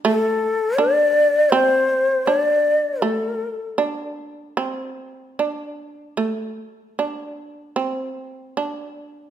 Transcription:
<<
  \new Staff \with { instrumentName = "Shakuhachi" } { \time 4/4 \tempo 4 = 76 a'4 d''4 c''4 d''4 | a'4 r2. | r1 | }
  \new Staff \with { instrumentName = "Shamisen" } { \time 4/4 a4 d'4 c'4 d'4 | a4 d'4 c'4 d'4 | a4 d'4 c'4 d'4 | }
>>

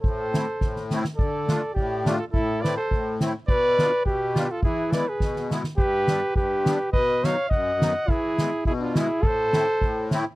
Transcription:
<<
  \new Staff \with { instrumentName = "Trumpet" } { \time 2/4 \key a \minor \tempo 4 = 104 c''4. r8 | d''4 d''8. a'16 | a'8 d''16 c''8. r8 | d''4 b'8. a'16 |
gis'8 d''16 b'8. r8 | b'4 b'4 | dis''8 f''8 fis''4 | gis'4 gis'16 f'16 gis'8 |
c''4. r8 | }
  \new Staff \with { instrumentName = "Flugelhorn" } { \time 2/4 \key a \minor a'4. r8 | a'4 g'8. f'16 | e'8 b'16 a'8. r8 | b'4 g'8. f'16 |
e'8 b'16 gis'8. r8 | g'4 g'4 | b'8 cis''8 dis''4 | e'4 e'16 d'16 e'8 |
a'4. r8 | }
  \new Staff \with { instrumentName = "Accordion" } { \time 2/4 \key a \minor r8 <a c' e'>8 r8 <a c' e'>8 | r8 <a d' f'>8 r8 <a d' f'>8 | r8 <a c' e'>8 r8 <a c' e'>8 | r8 <b d' f'>8 r8 <b d' f'>8 |
r8 <gis b e'>8 r8 <gis b e'>8 | r8 <g b d'>8 r8 <g b d'>8 | r8 <fis b dis'>8 r8 <fis b dis'>8 | r8 <gis b e'>8 r8 <gis b e'>8 |
r8 <a c' e'>8 r8 <a c' e'>8 | }
  \new Staff \with { instrumentName = "Accordion" } { \clef bass \time 2/4 \key a \minor a,4 a,4 | d4 a,4 | a,4 a,4 | b,4 b,4 |
e4 b,4 | g,4 g,4 | b,4 fis,4 | e4 b,4 |
a,4 a,4 | }
  \new DrumStaff \with { instrumentName = "Drums" } \drummode { \time 2/4 bd8 <hhp sn>8 <bd sn>16 sn16 <hhp sn>16 sn16 | bd8 <hhp sn>8 bd8 <hhp sn>8 | bd8 <hhp sn>8 bd8 <hhp sn>8 | bd8 <hhp sn>8 bd8 <hhp sn>8 |
bd8 <hhp sn>8 <bd sn>16 sn16 <hhp sn>16 sn16 | bd8 <hhp sn>8 bd8 <hhp sn>8 | bd8 <hhp sn>8 bd8 <hhp sn>8 | bd8 <hhp sn>8 bd8 <hhp sn>8 |
bd8 <hhp sn>8 bd8 <hhp sn>8 | }
>>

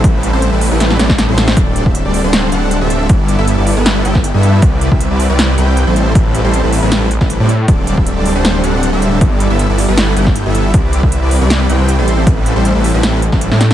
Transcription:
<<
  \new Staff \with { instrumentName = "Supersaw synth" } { \time 4/4 \key a \dorian \tempo 4 = 157 <g c' a' b'>8. <g c' e' a' c''>8 <g c' e' a' b'>8 <g c' e' a' b'>8. <g c' e' a' d''>8. <g c' e' a' c''>8. | <g c' d' a' d''>8. <g c' d' a' e''>8 <g c' d' a' d''>8 <g c' d' a' c''>8. <g c' d' a' fis''>8. <g c' d' a' e''>8. | r8. <g b e' a' e''>8 <g b e' a' d''>8 <g b e' a' b'>8. <g b e' a' g''>8. <g b e' a' e''>8. | r8. <g c' e' b' e''>8 <g c' e' b' d''>8 <g c' e' b' d''>8. <g c' e' b' g''>8. <g c' e' a' c''>8. |
<g c' e' a' b'>8. <g c' e' a' c''>8 <g c' e' a' b'>8 <g c' e' a' b'>8. r16 <g c' e' a' b'>8 <g c' e' a' d''>16 r8 | <g c' d' a' d''>8. <g c' d' a' e''>8 <g c' d' a' d''>8 <g c' d' a' c''>8. <g c' d' a' fis''>8. <g c' d' a' e''>8. | b8. <g b e' a' e''>8 <g b e' a' d''>8 <g b e' a' b'>8. <g b e' a' g''>8. <g b e' a' e''>8. | r8. <g c' e' b' e''>8 <g c' e' b' d''>8 <g c' e' b' d''>8. <g c' e' b' g''>8. <g c' e' a' c''>8. |
<c' b'>8. <g c' e' a' c''>8 <g c' e' a' b'>8 <g c' e' a' b'>8. r16 <g c' e' a' b'>8 <g c' e' a' d''>16 r8 | }
  \new Staff \with { instrumentName = "Detuned saw bass" } { \clef bass \time 4/4 \key a \dorian a,,8. a,,8 a,,8 a,,8. a,,8. a,,8. | d,,8. d,,8 d,,8 d,,8. d,,8. d,,8. | g,,8. g,,8 g,,8 g,,8. g,,8. g,8. | c,8. c,8 c,8 c,8. c,8. a,,8. |
a,,8. a,,8 a,,8 a,,4 a,,8 a,8. | d,,8. d,,8 d,,8 d,,8. d,,8. d,,8. | g,,8. g,,8 g,,8 g,,8. g,,8. g,,8. | c,8. c,8 c,8 c,8. c,8. a,,8. |
a,,8. a,,8 a,,8 a,,4 a,,8 a,8. | }
  \new DrumStaff \with { instrumentName = "Drums" } \drummode { \time 4/4 <hh bd>8 hh8 hh8 hho8 <hh sn>16 sn16 <hh sn>16 <bd sn>16 <hh sn>8 <hh sn>16 sn16 | <hh bd>8 hh16 bd16 hh8 hho8 <hh sn>8 hh8 hh8 hh8 | <hh bd>8 hh8 hh8 hho8 <hh sn>8 hh16 <bd sn>16 hh8 hh8 | <hh bd>8 hh16 bd16 hh8 hho8 <hh sn>8 hh8 hh8 hh8 |
<hh bd>8 hh8 hh8 hho8 <hh sn>8 hh16 <bd sn>16 hh8 hh8 | <hh bd>8 hh16 bd16 hh8 hho8 <hh sn>8 hh8 hh8 hh8 | <hh bd>8 hh8 hh8 hho8 <hh sn>8 hh16 <bd sn>16 hh8 hh8 | <hh bd>8 hh16 bd16 hh8 hho8 <hh sn>8 hh8 hh8 hh8 |
<hh bd>8 hh8 hh8 hho8 <hh sn>8 hh16 <bd sn>16 hh16 sn16 <hh sn>16 sn16 | }
>>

